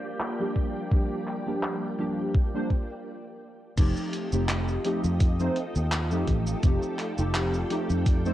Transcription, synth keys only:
0.39 0.88 F3 medium
0.39 0.88 G3 medium
0.39 0.88 A#3 medium
0.39 0.88 D4 medium
0.39 0.88 G4 medium
0.91 1.42 F3 medium
0.91 1.42 G3 medium
0.91 1.42 A#3 medium
0.91 1.42 D4 medium
0.91 1.43 G4 medium
1.46 1.95 F3 medium
1.46 1.95 G3 medium
1.46 1.95 A#3 medium
1.46 1.95 D4 medium
1.46 1.95 G4 medium
1.98 2.49 F3 medium
1.98 2.49 G3 medium
1.98 2.49 A#3 medium
1.98 2.50 D4 medium
1.98 2.50 G4 medium
2.53 2.71 F3 medium
2.53 2.71 G3 medium
2.53 2.71 A#3 medium
2.53 2.71 D4 medium
2.53 2.72 C5 loud
3.77 4.28 F3 medium
3.77 4.28 A3 medium
3.77 4.28 C4 medium
3.77 4.28 D#4 medium
3.77 4.28 G4 medium
4.32 4.80 F3 medium
4.32 4.81 A3 medium
4.32 4.81 C4 medium
4.32 4.81 D#4 medium
4.32 4.81 G4 medium
4.84 5.35 F3 medium
4.84 5.35 A3 medium
4.84 5.35 C4 medium
4.84 5.35 D#4 medium
4.84 5.36 G4 medium
5.39 5.56 F3 medium
5.39 5.57 A3 medium
5.39 5.57 C4 medium
5.39 5.57 D#4 medium
5.39 5.57 C5 loud
6.11 6.59 F3 medium
6.11 6.59 A3 medium
6.11 6.59 C4 medium
6.11 6.60 D#4 medium
6.11 6.60 G4 medium
6.62 7.13 F3 medium
6.62 7.13 A3 medium
6.62 7.14 C4 medium
6.62 7.14 D#4 medium
6.62 7.14 G4 medium
7.18 7.66 F3 medium
7.18 7.66 A3 medium
7.18 7.66 C4 medium
7.18 7.67 D#4 medium
7.18 7.67 G4 medium
7.70 8.21 F3 medium
7.70 8.21 A3 medium
7.70 8.21 C4 medium
7.70 8.21 D#4 medium
7.70 8.21 G4 loud
8.25 8.34 F3 medium
8.25 8.34 A3 medium
8.25 8.34 C4 medium
8.25 8.34 D#4 medium
8.25 8.34 C5 loud

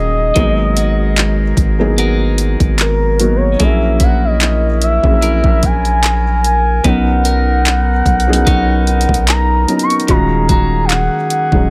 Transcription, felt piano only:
0.00 0.38 G#3 medium
0.00 0.38 C#4 medium
0.00 0.37 D#4 medium
0.00 0.37 F4 medium
0.00 0.37 G#4 medium
0.35 1.42 F#3 medium
0.35 1.42 A#3 medium
0.35 1.42 B3 medium
0.35 1.42 D#4 medium
0.35 1.43 G#4 loud
1.79 2.82 F#3 medium
1.79 2.83 A#3 medium
1.79 2.83 B3 medium
1.79 2.83 D#4 medium
1.79 2.83 G#4 loud
3.19 3.50 F#3 medium
3.19 3.50 A#3 medium
3.19 3.50 B3 medium
3.19 3.51 D#4 medium
3.19 3.51 F#4 medium
3.59 4.66 F#3 medium
3.59 3.67 A3 medium
3.59 4.66 C#4 medium
3.59 4.66 E4 medium
3.59 4.67 G#4 loud
3.66 4.69 A#3 medium
5.03 6.23 F#3 medium
5.03 6.23 A#3 medium
5.03 6.23 C#4 medium
5.03 6.24 E4 medium
5.03 6.24 G#4 medium
6.83 7.90 F#3 medium
6.83 7.90 B3 medium
6.83 7.91 C#4 medium
6.83 7.91 D#4 medium
6.83 7.91 A#4 loud
8.27 9.31 F#3 medium
8.27 9.31 B3 medium
8.27 9.32 C#4 medium
8.27 9.32 D#4 medium
8.27 9.32 G#4 medium
9.67 9.98 F#3 medium
9.67 9.99 B3 medium
9.67 9.99 C#4 medium
9.67 9.99 D#4 medium
9.67 10.00 A#4 medium
10.08 11.15 G#3 medium
10.08 11.15 C#4 medium
10.08 11.15 D#4 medium
10.08 11.15 F4 medium
10.08 11.16 F#4 loud
11.52 11.70 F#3 medium
11.52 11.70 G#3 medium
11.52 11.70 C#4 medium
11.52 11.70 D#4 medium
11.52 11.70 G#4 medium

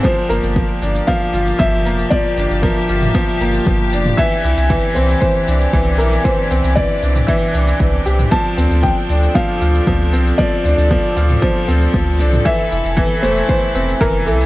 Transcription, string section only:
0.00 2.07 D4 medium
0.04 4.14 A#3 medium
0.04 8.28 G4 medium
2.11 4.16 E5 medium
4.18 8.28 E3 medium
4.18 14.46 C4 medium
4.18 12.42 D4 medium
8.32 14.46 A4 medium
12.46 14.46 E4 medium

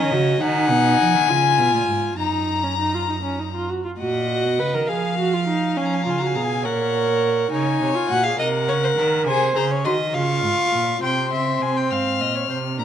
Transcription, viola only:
0.00 0.14 C#4 medium
0.12 0.41 F#4 medium
0.42 1.31 D#4 medium
1.29 2.17 F4 medium
2.18 2.65 D#4 medium
2.63 2.78 C#4 medium
2.79 2.96 D#4 medium
2.94 3.08 F4 medium
3.09 3.15 D#4 medium
3.23 3.41 C#4 medium
3.39 3.54 D#4 medium
3.54 3.70 F4 medium
3.69 3.84 F#4 medium
3.85 3.91 F4 medium
4.00 4.27 F#4 medium
4.29 4.61 F#4 medium
4.59 4.75 B4 medium
4.74 4.90 A#4 medium
4.89 5.18 G#4 medium
5.19 5.35 F#4 medium
5.33 5.47 F4 medium
5.47 5.78 D#4 medium
5.77 6.06 C#4 medium
6.06 6.22 F4 medium
6.21 6.37 F#4 medium
6.35 6.66 G#4 medium
6.64 7.50 A#4 medium
7.51 7.96 D#4 medium
7.95 8.12 F4 medium
8.10 8.24 F#4 medium
8.24 8.39 G#4 medium
8.39 9.29 A#4 medium
9.27 9.57 C5 medium
9.56 9.85 G#4 medium
9.85 9.93 F#4 medium
10.14 11.01 F4 medium
11.03 12.75 C4 medium
12.79 12.85 D4 medium

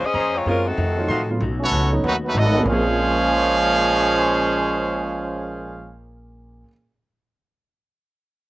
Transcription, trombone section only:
0.67 1.29 C3 medium
0.67 1.29 D#3 medium
0.67 1.29 A3 medium
1.60 1.90 F#3 medium
1.60 1.90 A3 medium
1.60 1.90 C#4 medium
2.04 2.13 D#3 medium
2.04 2.13 F#3 medium
2.04 2.13 B3 medium
2.24 2.35 D#3 medium
2.24 2.34 F#3 medium
2.24 2.35 B3 medium
2.35 2.61 F#3 medium
2.35 2.61 A3 medium
2.35 2.61 D#4 medium
2.65 5.93 A#2 loud
2.65 5.93 F3 loud
2.65 5.93 G#3 loud
2.65 5.93 C#4 loud

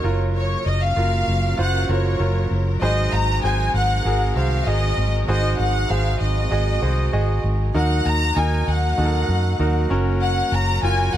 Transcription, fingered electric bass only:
0.04 0.55 F#1 medium
0.66 0.91 F#1 medium
0.97 1.22 F#1 medium
1.28 1.53 F#1 medium
1.59 1.84 F#1 medium
1.89 2.15 F#1 loud
2.20 2.45 F#1 loud
2.51 2.76 F#1 medium
2.82 3.07 G#1 loud
3.13 3.38 G#1 medium
3.44 3.69 G#1 loud
3.74 4.00 G#1 medium
4.05 4.31 G#1 medium
4.36 4.61 C2 medium
4.67 4.92 G#1 medium
4.98 5.23 G#1 medium
5.28 5.54 G#1 loud
5.59 5.85 G#1 medium
5.90 6.16 G#1 medium
6.21 6.46 G#1 medium
6.52 6.77 G#1 loud
6.82 7.08 C2 medium
7.13 7.39 G#1 medium
7.44 7.70 G#1 medium
7.75 8.00 D#2 loud
8.06 8.31 D#2 medium
8.37 8.62 D#2 loud
8.68 8.93 D#2 medium
8.98 9.24 D#2 medium
9.29 9.54 F#2 medium
9.59 9.85 D#2 loud
9.91 10.41 F#1 medium
10.52 10.78 F#1 medium
10.83 11.08 F#1 loud
11.14 11.17 F#1 medium

